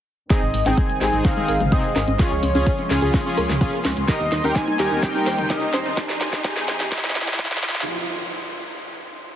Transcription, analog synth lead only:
0.30 D#5
0.66 G5
0.77 G#5
1.25 F5
1.72 D#5
2.19 C#5
4.09 D#5
4.44 G5
4.56 G#5
5.03 G5
5.50 D#5

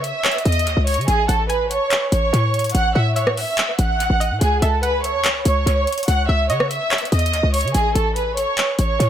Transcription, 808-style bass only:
Already playing: C#3
0.45 E2
0.66 D#2
0.77 C#2
0.98 C#3
1.08 A1
1.29 A1
2.12 A1
2.33 A2
2.75 A1
2.95 A2
3.79 A1
4.10 A1
4.31 A2
4.41 C#2
4.62 C#2
5.14 E2
5.30 C#2
5.46 C#2
5.66 C#2
6.08 C#2
6.29 C#2
6.50 C#3
7.12 E2
7.33 D#2
7.43 C#2
7.64 C#3
7.75 A1
7.95 A1
8.79 A1
9.00 A2

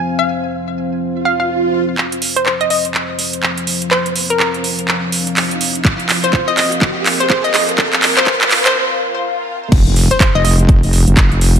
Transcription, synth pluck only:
0.19 F5
1.25 F5
1.40 F5
2.36 C5
2.46 C5
2.61 D#5
2.71 D#5
3.91 C5
4.30 A#4
4.40 A#4
6.24 C5
6.33 C5
6.48 D#5
6.57 D#5
7.20 C5
7.30 C5
7.44 D#5
7.54 D#5
8.17 C5
8.66 C5
10.11 C5
10.21 C5
10.35 D#5
10.45 D#5

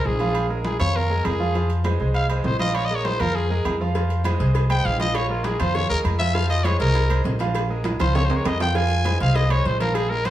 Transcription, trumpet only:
0.06 G#4
0.65 G#4
0.80 C#5
0.96 A#4
1.25 G#4
2.15 F5
2.29 G#4
2.45 C5
2.59 D#5
2.75 C#5
2.85 D#5
2.95 C#5
3.05 C5
3.20 A#4
3.35 G#4
4.70 G5
4.85 F5
5.00 D#5
5.15 C#5
5.30 F4
5.45 G#4
5.60 C5
5.75 C#5
5.89 A#4
6.19 E5
6.35 F5
6.50 D#5
6.64 C#5
6.79 A#4
8.00 C5
8.15 C#5
8.25 C5
8.36 C#5
8.46 D#5
8.61 G5
8.76 G#5
9.21 F5
9.35 D#5
9.51 C#5
9.66 C5
9.80 A#4
9.94 G#4
10.10 A#4
10.25 C5

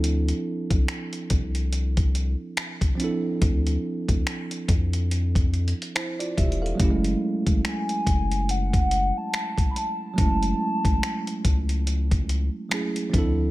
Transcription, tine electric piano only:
Already playing: F3 C4 D4 E4 A4
2.95 F3 C4
3.00 D4 E4
3.04 A4
5.95 E4 C5
6.19 F4 D5
6.37 G4 E5
6.62 A4 F5
6.75 F#3 A3
6.80 C#4 E4
6.84 G4
6.90 G#3
10.14 F#3 A3
10.18 C#4 E4
10.22 G#3
12.69 F#3 A3 C#4 E4
12.74 G#4
13.10 F3 C4
13.14 D4 E4
13.18 A4

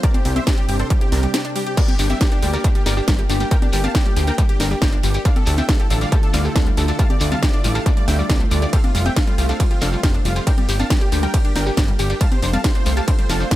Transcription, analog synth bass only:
0.25 C2
0.69 G1
1.12 C2
1.99 G1
2.43 D2
2.86 G1
3.08 G1
3.30 G1
3.73 G1
4.17 D2
4.60 G1
4.82 G1
5.03 G1
5.47 D2
5.90 A1
6.34 D2
6.56 D2
6.77 D2
7.21 D2
7.64 A1
8.08 D2
8.29 C2
8.51 D2
8.95 F1
9.38 C2
9.82 F1
10.03 F1
10.25 F1
10.69 G1
11.12 D2
11.56 G1
11.77 G1
11.99 G1
12.43 F1
12.86 C2
13.29 F1
13.51 F1

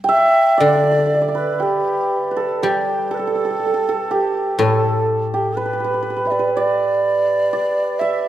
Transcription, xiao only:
0.12 E5
0.60 D5
1.36 B4
1.63 G4
2.40 A4
2.63 G4
3.14 A4 B4
4.12 G4
4.61 A4 B4
5.34 G4 A4
5.57 B4
6.27 D5 E5
6.53 D5
7.99 E5

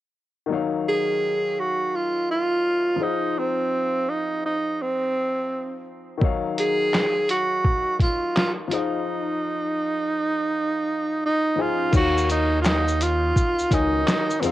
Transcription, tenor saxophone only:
0.88 G#4
1.60 F#4
1.95 F4
2.31 F4
3.03 D#4
3.39 C4
4.09 D#4
4.46 D#4
4.82 C4
6.60 G#4
7.31 F#4
8.02 F4
8.38 F4
8.69 F4
8.74 D#4
11.25 D#4
11.61 F4
11.96 F#4
12.31 D#4
12.62 F4
12.67 D#4
13.02 F4
13.74 D#4
14.41 B3
14.45 C4

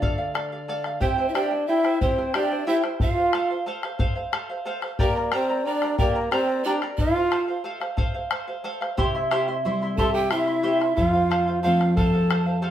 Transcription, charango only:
0.02 A4 D5 F5
0.18 D5 F5
0.34 A4 D5 F5
0.52 D5 F5
0.68 A4 D5 F5
0.85 D5 F5
1.01 E4 G4 C5 E5 G5
1.18 E4 C5 G5
1.34 E4 G4 C5 E5 G5
1.51 E4 C5 G5
1.68 E4 C5 E5 G5
1.84 E4 C5 G5
2.01 E4 G4 C5 E5 G5
2.18 E4 C5 G5
2.35 E4 G4 C5 E5 G5
2.51 E4 C5 G5
2.67 E4 G4 C5 E5 G5
2.83 E4 C5 G5
3.00 A4 C5 F5
3.17 C5 F5
3.34 A4 C5 F5
3.50 C5 F5
3.66 A4 C5 F5
3.84 C5 F5
3.99 A4 C5 F5
4.15 C5 F5
4.32 A4 C5 F5
4.49 C5 F5
4.65 A4 C5 F5
4.82 C5 F5
4.99 G4 A#4 D5 G5 A#5
5.16 A#4 D5 A#5
5.32 G4 A#4 D5 G5 A#5
5.49 A#4 D5 A#5
5.65 A#4 D5 G5 A#5
5.83 A#4 D5 A#5
5.98 G4 A#4 D5 G5 A#5
6.15 A#4 D5 A#5
6.31 G4 A#4 D5 G5 A#5
6.48 A#4 D5 A#5
6.65 G4 A#4 D5 G5 A#5
6.82 A#4 D5 A#5
6.99 A4 C5 F5
7.16 C5 F5
7.31 A4 C5 F5
7.48 C5 F5
7.64 A4 C5 F5
7.80 C5 F5
7.97 A4 C5 F5
8.14 C5 F5
8.31 A4 C5 F5
8.48 C5 F5
8.64 A4 C5 F5
8.81 C5 F5
8.97 E4 G4 C5 E5 C6
9.15 E4 E5 C6
9.31 E4 G4 C5 E5 C6
9.48 E4 E5 C6
9.65 E4 C5 E5 C6
9.82 E4 E5 C6
9.99 E4 G4 C5 E5 C6
10.14 E4 E5 C6
10.30 E4 G4 C5 E5 C6
10.47 E4 E5 C6
10.63 E4 G4 C5 E5 C6
10.80 E4 E5 C6
10.97 A4 C5 F5
11.13 C5 F5
11.30 A4 C5 F5
11.48 C5 F5
11.63 A4 C5 F5
11.79 C5 F5
11.97 A4 C5 F5
12.13 C5 F5
12.30 A4 C5 F5
12.46 C5 F5
12.62 A4 C5 F5

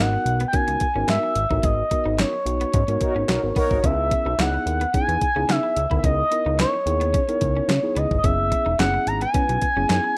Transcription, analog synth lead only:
0.00 F#5
0.48 G5
0.55 G#5
1.10 E5
1.64 D#5
2.20 C#5
3.58 C#5
3.85 E5
4.40 F#5
4.95 G#5
5.50 E5
5.99 E5
6.04 D#5
6.60 C#5
7.97 D#5
8.18 D#5
8.25 E5
8.79 F#5
9.07 A#5
9.22 G#5

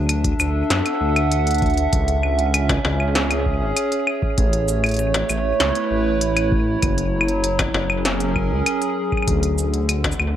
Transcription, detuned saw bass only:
Already playing: D2
0.40 D2
0.70 F#2
1.01 D2
1.93 C#2
2.85 C#2
3.61 G#1
4.38 A1
5.29 A1
5.60 C#2
5.91 A1
6.83 F#1
7.74 F#1
8.51 C#2
9.27 D2
10.19 D2

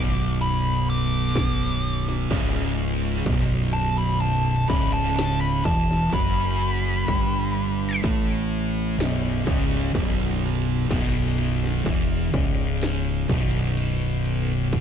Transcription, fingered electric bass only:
Already playing: B0
2.30 C#1
3.26 B0
4.70 C#1
5.65 E1
6.12 F#1
7.08 G1
8.04 A1
8.98 B0
9.47 C#1
9.95 B0
10.91 B0
11.86 E1
12.34 C#1
13.29 B0

